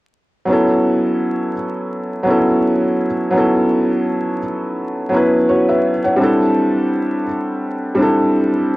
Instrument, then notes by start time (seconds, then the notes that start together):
felt piano
0.45 F#3 B3 C#4
0.51 E4 A4
2.23 F#3 B3 C#4
2.29 E4 A4
3.31 F#3 B3 C#4
3.36 E4 A4
5.09 F#3 B3 C#4
5.14 E4 B4
5.49 F#4 C#5
5.68 B4 E5
6.04 C#5 F#5
6.16 G3 C4 D4
6.22 E4 A4
7.95 G3 C4 D4
8.00 E4 A4